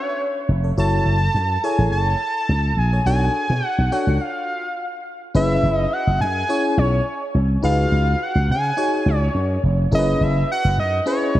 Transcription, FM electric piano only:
0.64 0.70 A4 medium
0.64 0.70 C#5 medium
0.78 1.17 E4 medium
0.78 1.17 F#4 medium
0.78 1.18 A4 medium
0.78 1.18 C#5 medium
1.64 2.16 E4 medium
1.64 2.16 G#4 medium
1.64 2.16 A4 medium
1.64 2.16 C#5 medium
2.92 2.99 A4 medium
2.92 2.99 C#5 medium
3.06 3.46 D4 medium
3.06 3.46 F#4 medium
3.06 3.46 A4 medium
3.06 3.46 C#5 medium
3.92 4.20 D4 medium
3.92 4.21 F#4 medium
3.92 4.21 A4 medium
3.92 4.21 C#5 medium
5.35 5.87 C#4 medium
5.35 5.87 E4 medium
5.35 5.87 G#4 medium
5.35 5.88 B4 medium
6.49 7.01 C#4 medium
6.49 7.02 E4 medium
6.49 7.02 G#4 medium
6.49 7.02 C#5 medium
7.63 8.15 D#4 medium
7.63 7.70 F4 medium
7.63 8.16 G#4 medium
7.63 8.16 B4 medium
7.70 8.19 F#4 medium
8.77 9.30 D#4 medium
8.77 9.30 F#4 medium
8.77 9.30 G#4 medium
8.77 9.30 C#5 medium
9.92 10.44 C#4 medium
9.92 10.44 E4 medium
9.92 10.45 G#4 medium
9.92 9.99 A#4 medium
9.99 10.48 B4 medium
11.06 11.40 C#4 medium
11.06 11.40 E4 medium
11.06 11.40 G#4 medium
11.06 11.40 B4 medium

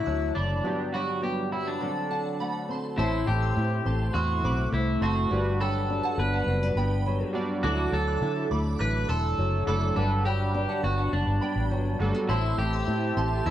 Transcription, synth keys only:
0.00 0.68 E3 medium
0.00 0.67 A3 medium
0.00 0.65 D4 medium
0.00 0.68 F#4 medium
0.64 0.86 F#3 medium
0.64 0.86 B3 medium
0.64 0.86 D4 medium
0.64 0.87 G4 medium
0.92 1.79 G3 medium
0.92 1.77 B3 medium
0.92 1.78 D4 medium
0.92 1.77 F#4 medium
1.80 2.74 F#3 medium
1.80 2.75 C4 medium
1.80 2.75 D4 medium
1.80 2.76 A4 medium
2.97 3.81 A3 medium
2.97 3.82 C4 medium
2.97 3.82 E4 medium
2.97 3.83 C5 medium
5.01 5.22 A3 medium
5.01 5.23 C4 medium
5.01 5.23 E4 medium
5.01 5.24 C5 medium
5.30 6.15 G3 medium
5.30 6.15 D4 medium
5.30 6.15 F#4 medium
5.30 6.16 B4 medium
7.33 7.55 G3 medium
7.33 7.55 D4 medium
7.33 7.56 F#4 medium
7.33 7.56 D5 medium
7.63 8.47 F#3 medium
7.63 8.47 D4 medium
7.63 8.48 E4 medium
7.63 8.48 A4 medium
9.66 9.88 F#3 medium
9.66 9.88 D4 medium
9.66 9.89 E4 medium
9.66 9.89 A4 medium
9.96 10.80 G3 medium
9.96 10.81 D4 medium
9.96 10.81 B4 medium
9.96 10.81 F#5 medium
11.99 12.21 G3 medium
11.99 12.21 D4 medium
11.99 12.21 F#4 medium
11.99 12.22 A4 loud
12.28 13.13 A3 medium
12.28 13.13 C4 medium
12.28 13.13 E4 medium
12.28 13.14 C5 medium

